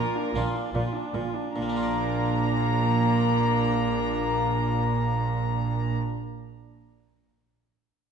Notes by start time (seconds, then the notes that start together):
Already playing: A#2 A#3 F4 A#4 A#5
0.15 D4
0.34 A#1 A#2 A#3 D4 F4
0.54 D4
0.73 A#1 A#2 F4
0.95 D4
1.13 A#1 A#2 F4
1.34 D4
1.55 A#1 A#2 A#3 D4 A#5
1.62 A#3
1.69 D4
1.76 F4
1.83 D5